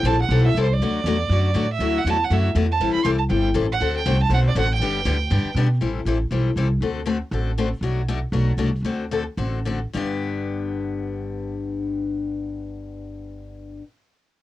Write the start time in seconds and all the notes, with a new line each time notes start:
0.03 A#1 E3 G3 C4 E4 A4 A5
0.22 F#5
0.29 B1 E3 G3 C4 E4 A4
0.46 E5
0.55 C2 E3 G3 C4 E4 A4
0.63 C5
0.73 D5
0.79 D2 D3 F#3 A3 D4 F#4
1.04 E2 D3 F#3 A3 D4 F#4
1.29 F#2 D3 F#3 A3 D4 F#4
1.54 A2 D3 F#3 A3 D4 F#4
1.74 E5
1.79 D2 D3 F#3 A3 E4 F#4
1.98 F#5
2.04 E2 D3 F#3 A3 E4 F#4
2.10 A5
2.24 F#5
2.30 F#2 D3 F#3 A3 E4 F#4 E5
2.55 E2 D3 F#3 A3 E4 F#4
2.72 A5
2.80 A1 E3 G3 C4 E4 A4
2.93 B5, muted upright bass stroke
3.04 C2 E3 G3 C4 E4 A4 C6
3.18 A5
3.30 G1 E3 G3 C4 E4 A4 G5
3.54 A1 E3 G3 C4 E4 A4
3.72 F#5
3.80 D2 D3 A3 C4 F#4 A4
3.97 G5
4.06 C2 D3 A3 C4 F#4 A4
4.23 A5
4.29 B1 D3 A3 C4 F#4 A4
4.34 F#5
4.48 D5
4.55 A1 D3 A3 C4 F#4 A4 F#5
4.75 G5
4.80 G1 D3 G3 B3 D4 G4
5.05 D2 D3 G3 B3 D4 G4
5.30 G2 D3 G3 B3 D4 G4
5.44 muted upright bass stroke
5.55 B2 D3 G3 B3 D4 G4
5.81 A1 E3 G3 C4 E4 A4
6.05 A1 E3 G3 C4 E4 A4
6.31 B1 E3 G3 C4 E4 A4
6.56 C2 E3 G3 C4 E4 A4
6.81 D2 D3 A3 C4 F#4 A4
7.06 D3 A3 C4 F#4 A4
7.31 A1 D3 A3 C4 F#4 A4
7.58 D3 A3 C4 F#4 A4
7.81 B1 B2 F#3 A3 D4 F#4
8.08 B2 F#3 A3 D4 F#4
8.32 B1 B2 F#3 A3 D4 F#4
8.57 C2 B2 F#3 A3 D4 F#4
8.82 D2 D3 A3 C4 F#4 A4
9.11 D3 A3 C4 F#4 A4
9.37 A1 D3 A3 C4 F#4 A4
9.65 D3 A3 C4 F#4 A4
9.93 G1 G2 D3 B3 D4 G4